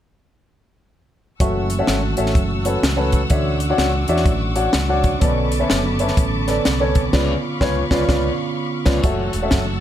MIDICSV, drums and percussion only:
0, 0, Header, 1, 2, 480
1, 0, Start_track
1, 0, Key_signature, 3, "minor"
1, 0, Tempo, 477783
1, 1402, Time_signature, 4, 2, 24, 8
1, 9847, End_track
2, 0, Start_track
2, 0, Title_t, "Drums"
2, 1408, Note_on_c, 9, 42, 93
2, 1409, Note_on_c, 9, 36, 87
2, 1509, Note_off_c, 9, 36, 0
2, 1509, Note_off_c, 9, 42, 0
2, 1706, Note_on_c, 9, 42, 68
2, 1807, Note_off_c, 9, 42, 0
2, 1883, Note_on_c, 9, 38, 92
2, 1891, Note_on_c, 9, 42, 80
2, 1983, Note_off_c, 9, 38, 0
2, 1992, Note_off_c, 9, 42, 0
2, 2179, Note_on_c, 9, 42, 61
2, 2273, Note_on_c, 9, 38, 33
2, 2280, Note_off_c, 9, 42, 0
2, 2363, Note_on_c, 9, 36, 106
2, 2365, Note_on_c, 9, 42, 82
2, 2374, Note_off_c, 9, 38, 0
2, 2463, Note_off_c, 9, 36, 0
2, 2465, Note_off_c, 9, 42, 0
2, 2663, Note_on_c, 9, 42, 69
2, 2763, Note_off_c, 9, 42, 0
2, 2848, Note_on_c, 9, 38, 116
2, 2848, Note_on_c, 9, 42, 85
2, 2948, Note_off_c, 9, 38, 0
2, 2948, Note_off_c, 9, 42, 0
2, 3139, Note_on_c, 9, 42, 66
2, 3145, Note_on_c, 9, 36, 80
2, 3239, Note_off_c, 9, 42, 0
2, 3245, Note_off_c, 9, 36, 0
2, 3313, Note_on_c, 9, 42, 96
2, 3320, Note_on_c, 9, 36, 105
2, 3413, Note_off_c, 9, 42, 0
2, 3420, Note_off_c, 9, 36, 0
2, 3618, Note_on_c, 9, 42, 69
2, 3718, Note_off_c, 9, 42, 0
2, 3801, Note_on_c, 9, 38, 95
2, 3810, Note_on_c, 9, 42, 76
2, 3901, Note_off_c, 9, 38, 0
2, 3910, Note_off_c, 9, 42, 0
2, 4096, Note_on_c, 9, 42, 55
2, 4187, Note_on_c, 9, 38, 33
2, 4197, Note_off_c, 9, 42, 0
2, 4276, Note_on_c, 9, 36, 112
2, 4277, Note_on_c, 9, 42, 91
2, 4288, Note_off_c, 9, 38, 0
2, 4376, Note_off_c, 9, 36, 0
2, 4377, Note_off_c, 9, 42, 0
2, 4577, Note_on_c, 9, 42, 66
2, 4678, Note_off_c, 9, 42, 0
2, 4752, Note_on_c, 9, 38, 107
2, 4752, Note_on_c, 9, 42, 87
2, 4852, Note_off_c, 9, 38, 0
2, 4852, Note_off_c, 9, 42, 0
2, 5060, Note_on_c, 9, 42, 59
2, 5065, Note_on_c, 9, 36, 88
2, 5161, Note_off_c, 9, 42, 0
2, 5165, Note_off_c, 9, 36, 0
2, 5238, Note_on_c, 9, 42, 95
2, 5242, Note_on_c, 9, 36, 104
2, 5339, Note_off_c, 9, 42, 0
2, 5342, Note_off_c, 9, 36, 0
2, 5543, Note_on_c, 9, 42, 69
2, 5643, Note_off_c, 9, 42, 0
2, 5724, Note_on_c, 9, 38, 106
2, 5733, Note_on_c, 9, 42, 80
2, 5825, Note_off_c, 9, 38, 0
2, 5833, Note_off_c, 9, 42, 0
2, 6019, Note_on_c, 9, 42, 55
2, 6107, Note_on_c, 9, 38, 34
2, 6119, Note_off_c, 9, 42, 0
2, 6201, Note_on_c, 9, 36, 113
2, 6201, Note_on_c, 9, 42, 92
2, 6208, Note_off_c, 9, 38, 0
2, 6301, Note_off_c, 9, 42, 0
2, 6302, Note_off_c, 9, 36, 0
2, 6507, Note_on_c, 9, 38, 28
2, 6507, Note_on_c, 9, 42, 66
2, 6608, Note_off_c, 9, 38, 0
2, 6608, Note_off_c, 9, 42, 0
2, 6684, Note_on_c, 9, 38, 118
2, 6684, Note_on_c, 9, 42, 90
2, 6784, Note_off_c, 9, 38, 0
2, 6784, Note_off_c, 9, 42, 0
2, 6984, Note_on_c, 9, 42, 68
2, 6988, Note_on_c, 9, 36, 90
2, 7085, Note_off_c, 9, 42, 0
2, 7089, Note_off_c, 9, 36, 0
2, 7165, Note_on_c, 9, 38, 100
2, 7165, Note_on_c, 9, 49, 77
2, 7167, Note_on_c, 9, 36, 92
2, 7265, Note_off_c, 9, 38, 0
2, 7265, Note_off_c, 9, 49, 0
2, 7268, Note_off_c, 9, 36, 0
2, 7645, Note_on_c, 9, 36, 91
2, 7645, Note_on_c, 9, 38, 82
2, 7746, Note_off_c, 9, 36, 0
2, 7746, Note_off_c, 9, 38, 0
2, 7945, Note_on_c, 9, 38, 92
2, 7947, Note_on_c, 9, 36, 90
2, 8046, Note_off_c, 9, 38, 0
2, 8047, Note_off_c, 9, 36, 0
2, 8125, Note_on_c, 9, 36, 110
2, 8125, Note_on_c, 9, 38, 96
2, 8225, Note_off_c, 9, 36, 0
2, 8226, Note_off_c, 9, 38, 0
2, 8897, Note_on_c, 9, 38, 90
2, 8897, Note_on_c, 9, 49, 69
2, 8903, Note_on_c, 9, 36, 98
2, 8997, Note_off_c, 9, 38, 0
2, 8997, Note_off_c, 9, 49, 0
2, 9004, Note_off_c, 9, 36, 0
2, 9077, Note_on_c, 9, 42, 86
2, 9079, Note_on_c, 9, 36, 95
2, 9178, Note_off_c, 9, 42, 0
2, 9180, Note_off_c, 9, 36, 0
2, 9375, Note_on_c, 9, 42, 73
2, 9475, Note_off_c, 9, 42, 0
2, 9553, Note_on_c, 9, 38, 105
2, 9562, Note_on_c, 9, 36, 77
2, 9562, Note_on_c, 9, 42, 80
2, 9653, Note_off_c, 9, 38, 0
2, 9662, Note_off_c, 9, 36, 0
2, 9662, Note_off_c, 9, 42, 0
2, 9847, End_track
0, 0, End_of_file